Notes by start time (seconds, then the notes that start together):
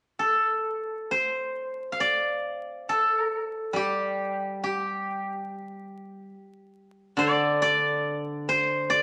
0.19 A4
1.11 C5
1.92 F5
2.00 D5
2.89 A4
3.73 G3 G4
4.63 G4
7.17 D3 D5
7.62 D5
8.49 C5
8.90 D5